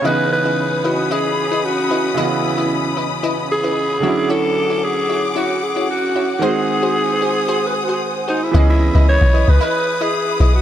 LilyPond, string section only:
\new Staff \with { instrumentName = "String section" } { \time 4/4 \key d \lydian \tempo 4 = 113 << { <b'' dis'''>1~ | <b'' dis'''>2.~ <b'' dis'''>8 <fis'' d'''>8~ | <fis'' d'''>1 | <gis'' dis'''>1 |
<e' b'' dis'''>1 | } \\ { cis'1~ | cis'1~ | cis'1 | bis'1 |
b'1 | } >> }